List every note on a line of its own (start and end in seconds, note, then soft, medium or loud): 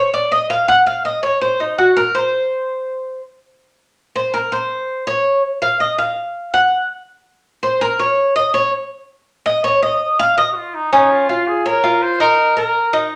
0.00 0.13 C#5 medium
0.14 0.31 D5 medium
0.32 0.50 D#5 medium
0.50 0.68 F5 medium
0.68 0.86 F#5 loud
0.87 1.04 F5 medium
1.05 1.22 D#5 medium
1.23 1.41 C#5 medium
1.41 1.59 C5 medium
1.60 1.78 D#4 medium
1.78 1.96 F#4 medium
1.97 2.14 A#4 medium
2.15 3.20 C5 medium
4.16 4.33 C5 medium
4.34 4.52 A#4 medium
4.52 5.03 C5 medium
5.07 5.41 C#5 medium
5.62 5.80 F5 medium
5.80 5.98 D#5 medium
5.98 6.50 F5 medium
6.54 6.88 F#5 medium
7.63 7.81 C5 medium
7.81 7.99 A#4 loud
8.00 8.34 C#5 medium
8.36 8.54 D#5 medium
8.54 8.72 C#5 medium
9.46 9.64 D#5 loud
9.64 9.82 C#5 loud
9.83 10.17 D#5 medium
10.19 10.37 F5 loud
10.38 10.49 D#5 medium
10.52 10.58 F#4 medium
10.56 10.76 F4 medium
10.75 10.93 D#4 medium
10.93 11.28 C#4 medium
10.93 11.13 D#4 loud
11.11 11.49 F4 medium
11.29 11.65 F4 medium
11.48 11.68 G#4 medium
11.66 12.04 A#4 loud
11.66 11.83 C#5 medium
11.84 12.19 F4 medium
12.02 12.20 C5 loud
12.20 12.56 D#4 medium
12.20 12.55 A#4 loud
12.57 12.92 A#4 medium
12.57 13.08 A#4 medium
12.93 13.16 D#4 medium